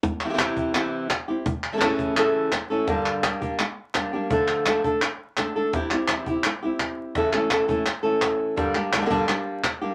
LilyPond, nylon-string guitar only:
\new Staff \with { instrumentName = "Nylon-string guitar" } { \time 4/4 \tempo 4 = 169 r4 <c e c' e' g'>4 <c e c' e' g'>4 r8 <c' e' g'>8 | r4 <a, cis e a cis' a'>4 <a, cis e a cis' a'>4 r8 <e a cis' a'>8 | <g, d g bes d' g'>4 <g bes d' g'>8 <g bes d' g'>8 r4 <g bes d' g'>8 <g bes d' g'>8 | <d f a d' a'>4 <f a d' a'>8 <a d' a'>8 r4 <a d' a'>8 <a d' a'>8 |
<c e c' e' g'>8 <c' e' g'>8 <e c' e' g'>8 <c' e' g'>8 r8 <c' e' g'>4. | <a, cis e a cis' a'>8 <e a cis' a'>8 <e a cis' a'>8 <e a cis' a'>8 r8 <e a cis' a'>4. | <g, d g bes d' g'>8 <g bes d' g'>8 <g bes d' g'>8 <g, d g bes d' g'>8 <g bes d' g'>4 r8 <g bes d' g'>8 | }